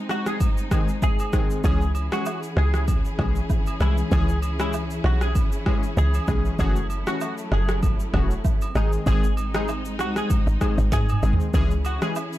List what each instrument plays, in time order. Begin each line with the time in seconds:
Already playing: string section G#3 C4 D#4
0.09 clean electric guitar F#4, cross-stick, shaker
0.26 clean electric guitar G#4, cross-stick, shaker
0.40 kick, high agogo, shaker
0.58 shaker
0.71 synth keys D#3 G#3 C4 G#4, kick, cross-stick, high agogo, shaker
0.88 shaker
1.02 clean electric guitar G#4, kick, low woodblock, shaker
1.19 high agogo, shaker
1.33 synth keys D#3 G#3 C4 G#4, kick, cross-stick, shaker
1.50 shaker
1.64 log drum bass C#2, synth keys E3 G#3 C#4 G#4, string section E3 C#4 E4 G#4, clean electric guitar G#4, kick, high agogo, shaker
1.81 shaker
1.95 high agogo, shaker
2.12 synth keys E3 G#3 C#4 G#4, clean electric guitar F#4, cross-stick, shaker
2.26 high agogo, low woodblock, shaker
2.43 shaker
2.57 log drum bass C#2, clean electric guitar G#4, cross-stick
2.74 cross-stick, shaker
2.88 kick, high agogo, shaker
3.05 shaker
3.18 log drum bass B1, synth keys E3 G#3 C#4 G#4, kick, cross-stick, high agogo
3.36 shaker
3.50 kick, low woodblock, shaker
3.67 high agogo, shaker
3.80 log drum bass C2, synth keys E3 G#3 C#4 G#4, clean electric guitar E4, cross-stick, shaker
3.98 shaker
4.11 log drum bass C#2, synth keys E3 G#3 C#4 G#4, clean electric guitar G#4, kick, high agogo, shaker
4.29 shaker
4.42 high agogo, shaker
4.59 synth keys E3 G#3 C#4 G#4, clean electric guitar E4, cross-stick, shaker
4.73 high agogo, low woodblock, shaker
4.90 shaker
5.04 log drum bass B1, clean electric guitar F#4, cross-stick
5.21 clean electric guitar G#4, cross-stick, shaker
5.35 kick, high agogo, shaker
5.52 shaker
5.66 synth keys E3 G#3 C#4 G#4, kick, cross-stick, high agogo
5.83 shaker
5.97 log drum bass C#2, clean electric guitar G#4, low woodblock, shaker
6.14 high agogo, shaker
6.28 log drum bass B1, synth keys E3 G#3 C#4 G#4, kick, cross-stick, shaker
6.45 shaker
6.59 log drum bass F#1, synth keys E3 A3 C#4 F#4, string section F#3 A3, clean electric guitar G#4, kick, high agogo, shaker
6.76 shaker
6.90 high agogo, shaker
7.07 synth keys E3 A3 C#4 F#4, clean electric guitar F#4, cross-stick, shaker
7.21 high agogo, low woodblock, shaker
7.38 shaker
7.52 log drum bass F#1, clean electric guitar G#4, cross-stick
7.69 cross-stick, shaker
7.83 kick, high agogo, shaker
8.00 shaker
8.13 log drum bass E1, synth keys E3 A3 C#4 F#4, kick, cross-stick, high agogo
8.31 shaker
8.45 kick, low woodblock, shaker
8.62 high agogo, shaker
8.75 log drum bass G#1, synth keys D#3 G#3 C4 G#4, string section G#3 C4 D#4, clean electric guitar D#4, cross-stick, shaker
8.93 shaker
9.06 log drum bass G#1, synth keys D#3 G#3 C4 G#4, clean electric guitar G#4, kick, high agogo, shaker
9.24 shaker
9.37 high agogo, shaker
9.54 synth keys D#3 G#3 C4 G#4, clean electric guitar D#4, cross-stick, shaker
9.68 high agogo, low woodblock, shaker
9.85 shaker
9.99 log drum bass C2, clean electric guitar F#4, cross-stick, shaker
10.16 clean electric guitar G#4, cross-stick, shaker
10.30 kick, high agogo, shaker
10.47 log drum bass G#1, shaker
10.61 synth keys D#3 G#3 C4 G#4, kick, cross-stick, high agogo, shaker
10.78 log drum bass G#1, shaker
10.92 log drum bass G#2, clean electric guitar G#4, kick, snare, low woodblock, shaker
11.09 mid tom, high agogo, shaker
11.23 log drum bass G#1, synth keys D#3 G#3 C4 G#4, shaker
11.33 floor tom
11.40 shaker
11.54 log drum bass C#2, synth keys E3 G#3 C#4 G#4, string section E3 C#4 E4 G#4, clean electric guitar G#4, kick, high agogo, shaker
11.71 shaker
11.85 clean electric guitar F#4, high agogo, shaker
12.01 synth keys E3 G#3 C#4 G#4, clean electric guitar G#4, cross-stick, shaker
12.16 high agogo, low woodblock, shaker
12.33 shaker